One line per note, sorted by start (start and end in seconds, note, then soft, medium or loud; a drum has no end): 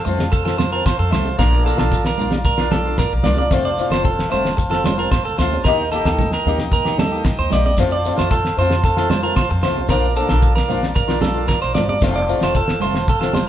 0.00 1.36 C5 medium
0.00 3.47 F5 medium
0.00 1.36 A5 medium
0.05 0.82 F2 medium
0.05 0.21 A3 medium
0.05 0.22 C4 medium
0.05 0.23 F4 medium
0.05 muted clean electric guitar stroke medium
0.05 low conga medium
0.05 shekere medium
0.19 snare medium
0.19 high conga medium
0.19 shekere soft
0.32 0.44 A4 medium
0.32 kick medium
0.32 shekere loud
0.45 0.63 C4 soft
0.45 0.61 F4 medium
0.45 0.58 A4 medium
0.45 snare medium
0.58 0.71 C5 medium
0.58 snare medium
0.58 high conga medium
0.58 low conga medium
0.58 shekere medium
0.72 0.90 C4 soft
0.72 0.88 F4 medium
0.72 0.85 A#4 medium
0.86 0.99 C5 loud
0.86 kick medium
0.86 snare medium
0.86 shekere loud
0.99 1.10 F2 medium
0.99 1.12 A4 medium
0.99 shekere soft
1.11 1.34 C2 medium
1.11 1.28 A3 medium
1.11 1.29 C4 medium
1.11 1.30 F4 medium
1.11 1.38 C5 medium
1.11 snare medium
1.11 low conga medium
1.11 shekere medium
1.25 high conga medium
1.25 shekere soft
1.38 1.71 A#1 loud
1.38 1.55 A#3 medium
1.38 1.55 D4 medium
1.38 1.56 F4 loud
1.38 1.64 A#4 medium
1.38 3.49 D5 medium
1.38 3.50 A#5 medium
1.38 kick medium
1.38 snare medium
1.38 shekere medium
1.53 shekere soft
1.64 1.78 A#3 medium
1.64 1.79 D4 medium
1.64 1.76 F4 medium
1.64 1.78 A4 medium
1.64 shekere medium
1.77 2.12 A#1 medium
1.77 1.96 D4 medium
1.77 1.94 F4 medium
1.77 2.05 A4 medium
1.77 snare medium
1.92 kick medium
1.92 shekere loud
2.05 2.31 A#4 medium
2.05 snare medium
2.05 shekere soft
2.17 2.94 A#1 medium
2.17 2.34 A#3 medium
2.17 2.35 D4 medium
2.17 2.36 F4 medium
2.17 low conga medium
2.17 shekere medium
2.31 snare medium
2.31 high conga medium
2.31 shekere soft
2.45 2.71 A#4 medium
2.45 kick medium
2.45 shekere loud
2.57 2.76 D4 medium
2.57 2.74 F4 medium
2.57 snare medium
2.71 2.97 A4 medium
2.71 snare medium
2.71 high conga medium
2.71 low conga medium
2.85 3.03 D4 soft
2.85 3.01 F4 medium
2.98 3.11 A#4 loud
2.98 kick medium
2.98 snare medium
2.98 shekere loud
3.12 3.23 A#1 loud
3.12 shekere soft
3.23 3.46 C2 medium
3.23 3.40 A#3 medium
3.23 3.41 D4 medium
3.23 3.42 F4 medium
3.23 3.37 D5 medium
3.23 snare medium
3.23 low conga medium
3.23 shekere medium
3.37 3.51 D5 medium
3.37 high conga medium
3.37 shekere soft
3.51 3.84 F1 loud
3.51 3.67 A3 medium
3.51 3.68 C4 medium
3.51 3.69 F4 medium
3.51 5.63 C5 medium
3.51 5.62 F5 medium
3.51 5.62 A5 medium
3.51 kick loud
3.51 snare medium
3.51 shekere loud
3.65 3.90 D5 medium
3.65 shekere soft
3.78 3.91 A3 medium
3.78 3.92 C4 medium
3.78 3.89 F4 medium
3.78 snare soft
3.78 shekere medium
3.90 4.23 F1 medium
3.90 4.07 F4 medium
3.90 4.04 C5 medium
3.90 snare medium
3.90 shekere soft
3.94 4.09 C4 medium
4.04 4.30 A4 medium
4.04 kick medium
4.04 shekere loud
4.19 snare medium
4.19 shekere soft
4.29 5.07 F1 loud
4.29 4.47 A3 medium
4.29 4.47 C4 medium
4.29 4.48 F4 medium
4.29 4.57 C5 medium
4.29 snare soft
4.29 low conga medium
4.29 shekere medium
4.45 snare medium
4.45 high conga medium
4.45 shekere soft
4.57 muted clean electric guitar stroke medium
4.57 kick medium
4.57 shekere loud
4.70 4.88 C4 medium
4.70 4.87 F4 medium
4.70 4.84 A4 medium
4.70 snare medium
4.84 4.98 C5 medium
4.84 snare medium
4.84 high conga medium
4.84 low conga medium
4.84 shekere medium
4.98 5.16 C4 soft
4.98 5.14 F4 medium
4.98 5.11 A#4 medium
5.11 5.24 C5 medium
5.11 kick loud
5.11 snare medium
5.11 shekere loud
5.25 5.36 F1 loud
5.25 5.37 A4 medium
5.25 shekere soft
5.38 5.60 D2 medium
5.38 5.54 A3 medium
5.38 5.55 C4 medium
5.38 5.56 F4 medium
5.38 5.64 C5 medium
5.38 snare medium
5.38 shekere medium
5.53 high conga medium
5.53 shekere soft
5.64 5.97 D#2 loud
5.64 5.81 D#3 loud
5.64 5.82 A#3 medium
5.64 5.82 D#4 medium
5.64 5.82 G4 loud
5.64 5.90 A#4 loud
5.64 7.75 D#5 medium
5.64 7.75 G5 medium
5.64 7.75 A#5 medium
5.64 kick loud
5.64 snare medium
5.64 shekere medium
5.79 shekere soft
5.92 6.05 D#3 medium
5.92 6.05 A#3 medium
5.92 6.06 D#4 medium
5.92 6.04 G4 medium
5.92 6.04 A4 medium
5.92 snare soft
5.92 shekere medium
6.05 6.37 D#2 medium
6.05 6.22 A#3 medium
6.05 6.22 D#4 medium
6.05 6.21 G4 medium
6.05 6.31 A4 medium
6.05 snare medium
6.05 shekere soft
6.19 kick loud
6.19 low conga medium
6.19 shekere medium
6.32 6.58 A#4 medium
6.32 snare medium
6.32 shekere soft
6.45 7.20 D#2 loud
6.45 6.60 D#3 medium
6.45 6.61 A#3 medium
6.45 6.62 D#4 medium
6.45 high conga medium
6.45 low conga medium
6.45 shekere medium
6.49 6.62 G4 medium
6.58 snare medium
6.58 high conga medium
6.72 6.97 A#4 medium
6.72 kick loud
6.72 shekere loud
6.85 7.02 A#3 soft
6.85 7.01 D#4 medium
6.85 7.00 G4 medium
6.85 snare medium
6.98 7.24 A4 medium
6.98 snare medium
6.98 high conga medium
6.98 low conga medium
6.98 shekere medium
7.12 7.29 A#3 soft
7.12 7.28 D#4 medium
7.12 7.27 G4 medium
7.12 shekere soft
7.24 muted clean electric guitar stroke medium
7.24 kick loud
7.24 snare medium
7.24 shekere loud
7.39 7.49 D#2 medium
7.39 7.50 C5 medium
7.39 shekere soft
7.50 7.73 A#1 medium
7.50 7.67 D#3 medium
7.50 7.68 A#3 medium
7.50 7.64 D5 medium
7.50 snare medium
7.50 low conga medium
7.50 shekere medium
7.54 7.68 D#4 medium
7.54 7.69 G4 medium
7.65 7.77 D5 medium
7.65 high conga medium
7.65 shekere soft
7.77 8.10 F2 loud
7.77 7.94 F3 medium
7.77 7.94 A3 medium
7.77 7.94 C4 medium
7.77 9.88 C5 medium
7.77 11.98 F5 medium
7.77 9.88 A5 medium
7.77 kick medium
7.77 snare medium
7.77 shekere loud
7.81 7.95 F4 medium
7.91 8.16 D5 medium
7.91 shekere soft
8.04 8.17 F3 medium
8.04 8.18 A3 medium
8.04 8.17 C4 medium
8.04 snare soft
8.04 shekere medium
8.08 8.15 F4 medium
8.16 8.50 F2 medium
8.16 8.34 A3 medium
8.16 8.32 F4 medium
8.16 8.30 C5 medium
8.16 muted steel-string acoustic guitar stroke medium
8.16 snare medium
8.16 shekere soft
8.31 8.56 A4 medium
8.31 kick medium
8.31 shekere medium
8.45 snare medium
8.45 shekere soft
8.56 9.32 F2 medium
8.56 8.72 F3 medium
8.56 8.73 A3 medium
8.56 8.74 C4 medium
8.56 8.74 F4 medium
8.56 8.83 C5 medium
8.56 shekere medium
8.70 snare medium
8.70 high conga medium
8.70 shekere soft
8.84 8.97 A4 medium
8.84 kick medium
8.84 shekere medium
8.97 9.14 A3 soft
8.97 9.13 C4 medium
8.97 9.12 F4 medium
8.97 9.10 A4 medium
8.97 snare medium
9.10 9.23 C5 medium
9.10 snare medium
9.10 high conga medium
9.10 low conga medium
9.10 shekere medium
9.23 9.41 A3 soft
9.23 9.40 C4 medium
9.23 9.39 F4 medium
9.23 9.36 A#4 medium
9.36 9.49 C5 loud
9.36 kick medium
9.36 snare medium
9.36 shekere loud
9.51 9.61 F2 loud
9.51 muted clean electric guitar stroke medium
9.51 shekere soft
9.62 9.78 F3 medium
9.62 9.79 A3 medium
9.62 9.79 C4 medium
9.62 9.80 F4 medium
9.62 9.88 C5 medium
9.62 snare medium
9.62 shekere medium
9.77 high conga medium
9.77 shekere soft
9.88 10.21 A#1 loud
9.88 10.05 F3 medium
9.88 10.06 A#3 medium
9.88 10.06 D4 medium
9.88 10.06 F4 medium
9.88 10.15 A#4 medium
9.88 12.00 D5 medium
9.88 12.00 A#5 medium
9.88 kick medium
9.88 snare medium
9.88 shekere medium
10.02 shekere soft
10.16 10.29 F3 medium
10.16 10.30 A#3 medium
10.16 10.29 D4 medium
10.16 10.28 A4 medium
10.16 muted steel-string acoustic guitar stroke medium
10.16 shekere medium
10.29 10.62 A#1 medium
10.29 10.46 A#3 medium
10.29 10.46 D4 medium
10.29 10.45 F4 medium
10.29 10.54 A4 medium
10.29 snare medium
10.29 shekere soft
10.42 kick medium
10.42 shekere medium
10.55 10.81 A#4 medium
10.55 snare medium
10.55 shekere soft
10.68 11.44 A#1 loud
10.68 10.84 F3 medium
10.68 10.85 A#3 medium
10.68 10.86 D4 medium
10.68 10.86 F4 medium
10.68 snare soft
10.68 low conga medium
10.68 shekere medium
10.83 snare medium
10.83 high conga medium
10.83 shekere soft
10.95 11.21 A#4 medium
10.95 kick medium
10.95 shekere loud
11.08 11.26 A#3 soft
11.08 11.25 D4 medium
11.08 11.24 F4 medium
11.08 snare medium
11.21 11.47 A4 medium
11.21 snare medium
11.21 high conga medium
11.21 low conga medium
11.21 shekere medium
11.34 11.52 A#3 medium
11.34 11.52 D4 medium
11.34 11.51 F4 medium
11.48 11.61 A#4 medium
11.48 kick medium
11.48 snare medium
11.48 shekere medium
11.62 11.74 A#1 loud
11.62 11.74 C5 medium
11.62 shekere soft
11.74 11.97 G1 medium
11.74 11.91 F3 medium
11.74 11.92 D4 medium
11.74 11.93 F4 medium
11.74 11.88 D5 medium
11.74 snare medium
11.74 low conga medium
11.74 shekere medium
11.88 12.01 D5 medium
11.88 high conga medium
11.88 shekere soft
12.01 12.34 F1 loud
12.01 12.18 F3 medium
12.01 12.18 A3 medium
12.01 12.19 C4 medium
12.01 12.19 F4 medium
12.01 13.49 C5 medium
12.01 13.49 F5 medium
12.01 13.49 A5 medium
12.01 kick medium
12.01 snare medium
12.01 shekere medium
12.15 12.41 D5 medium
12.15 shekere soft
12.27 12.41 F3 medium
12.27 12.42 A3 medium
12.27 12.41 C4 medium
12.27 12.39 F4 medium
12.27 shekere medium
12.40 12.73 F1 medium
12.40 12.59 A3 medium
12.40 12.58 C4 medium
12.40 12.57 F4 medium
12.40 12.55 C5 medium
12.40 snare medium
12.40 shekere soft
12.55 12.81 A4 medium
12.55 kick medium
12.55 shekere medium
12.68 snare medium
12.68 shekere soft
12.80 13.49 F1 loud
12.80 12.97 F3 medium
12.80 12.98 A3 medium
12.80 12.99 C4 medium
12.80 13.07 C5 medium
12.80 low conga medium
12.80 shekere medium
12.84 12.99 F4 medium
12.95 snare medium
12.95 shekere soft
13.08 13.20 A4 medium
13.08 kick loud
13.08 shekere loud
13.21 13.39 A3 soft
13.21 13.38 C4 medium
13.21 13.37 F4 medium
13.21 13.34 A4 medium
13.21 snare medium
13.33 13.47 C5 medium
13.33 snare medium
13.33 high conga medium
13.33 low conga medium
13.33 shekere medium